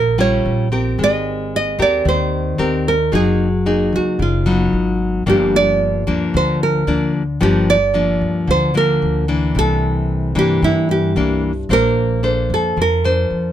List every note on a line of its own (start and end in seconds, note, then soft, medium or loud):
0.00 0.41 A#1 medium
0.00 0.96 A#2 medium
0.00 0.20 A#4 medium
0.18 0.67 G3 medium
0.18 0.68 C#4 medium
0.18 0.68 F4 medium
0.18 0.69 C#5 medium
0.45 0.95 A#1 medium
0.72 1.74 C4 medium
0.72 1.75 G4 medium
0.72 1.75 A#4 medium
0.98 1.75 G#1 medium
0.98 2.03 G#3 medium
1.04 1.55 D#5 loud
1.56 1.82 D#5 loud
1.78 2.03 D#2 medium
1.78 2.55 C4 medium
1.78 2.55 G4 medium
1.78 2.55 A#4 medium
1.78 2.08 D5 medium
2.05 2.55 D#2 medium
2.05 3.10 D#3 medium
2.05 2.88 C5 medium
2.58 3.09 D#2 medium
2.58 2.93 C4 soft
2.58 2.93 G4 soft
2.58 2.94 A#4 medium
2.88 3.12 A#4 medium
3.12 3.89 F#1 medium
3.12 4.17 F#3 medium
3.12 3.47 A#3 medium
3.12 3.47 D#4 medium
3.12 3.47 G#4 medium
3.12 3.95 G#4 medium
3.66 4.42 A#3 soft
3.66 4.42 D#4 soft
3.66 4.43 G#4 soft
3.93 4.18 C#2 medium
3.93 4.22 F#4 medium
4.19 4.69 F#1 medium
4.19 4.70 C#3 medium
4.19 4.97 F4 medium
4.46 5.22 F#3 medium
4.46 5.23 B3 medium
4.46 5.23 D#4 medium
4.73 5.23 G#1 medium
5.26 6.03 G1 medium
5.26 6.31 G2 medium
5.26 6.03 F3 medium
5.26 6.03 A#3 medium
5.26 6.03 D4 medium
5.26 5.56 G4 medium
5.56 6.36 D5 medium
6.07 6.32 D2 medium
6.07 6.83 F3 medium
6.07 6.83 A#3 medium
6.07 6.84 D4 medium
6.34 6.84 D2 medium
6.34 7.39 D3 soft
6.34 6.63 C5 medium
6.63 7.12 A#4 medium
6.87 7.37 D2 medium
6.87 7.22 F3 medium
6.87 7.22 A#3 soft
6.87 7.22 D4 medium
7.41 8.17 G1 medium
7.41 8.45 G2 medium
7.41 7.75 F3 medium
7.41 7.76 A#3 medium
7.41 7.76 D4 medium
7.41 7.67 G4 medium
7.70 8.50 D5 loud
7.94 8.71 F3 soft
7.94 8.71 A#3 medium
7.94 8.71 D4 medium
8.21 8.46 D2 medium
8.48 8.98 D2 medium
8.48 9.53 D3 medium
8.48 8.77 C5 medium
8.74 9.24 F3 medium
8.74 9.24 A#3 medium
8.74 9.24 D4 medium
8.74 9.26 A#4 medium
9.02 9.52 D2 medium
9.28 10.32 E3 medium
9.28 10.32 A#3 medium
9.28 10.32 D4 medium
9.55 10.32 C2 medium
9.55 10.60 C3 medium
9.55 10.38 A4 loud
10.35 10.61 G2 medium
10.35 11.12 E3 medium
10.35 11.12 A#3 medium
10.35 11.12 D4 medium
10.35 10.62 G4 medium
10.62 11.12 G2 medium
10.62 11.67 G2 medium
10.62 10.91 E4 medium
10.91 11.40 G4 medium
11.15 11.66 C2 medium
11.15 11.51 E3 medium
11.15 11.51 A#3 medium
11.15 11.51 D4 medium
11.69 12.46 A#1 medium
11.69 12.75 A#3 medium
11.69 12.20 D4 medium
11.69 12.53 A#4 loud
11.69 12.20 C5 medium
12.23 12.99 D4 medium
12.23 13.00 A4 soft
12.23 13.00 C5 medium
12.50 12.75 F2 medium
12.50 12.80 A4 medium
12.77 13.27 F2 medium
12.77 13.52 F3 medium
12.82 13.52 A#4 medium
13.04 13.52 D4 medium
13.04 13.52 C5 medium
13.30 13.52 F2 medium